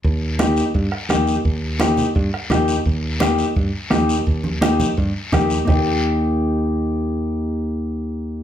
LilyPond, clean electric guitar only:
\new Staff \with { instrumentName = "Clean electric guitar" } { \time 4/4 \key ees \major \tempo 4 = 170 r4 <bes ees' g'>8 r4. <bes ees' g'>8 r8 | r4 <bes ees' g'>8 r4. <bes ees' g'>8 r8 | r4 <bes ees' g'>8 r4. <bes ees' g'>8 r8 | r4 <bes ees' g'>8 r4. <bes ees' g'>8 r8 |
<bes ees' g'>1~ | <bes ees' g'>1 | }